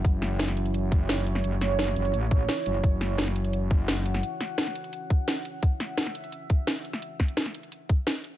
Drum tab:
HH |x-x-xxxxx-x-x-x-|x-x-xxxxx-x-x-x-|x-x-xxxxx-x-x-x-|x-x-xxxxx-x-x-x-|
SD |--o-oo------o--o|--o-oo------o---|--o-oo------o--o|--o-oo------o---|
BD |o---------o-----|----------o-----|o---------o-----|----------o-----|

HH |x-x-xxxxx-x-x-x-|x-xxxxxxx-x-xxx-|
SD |--o-oo------o--o|--o-oo------o---|
BD |o---------o-----|--o-------o-----|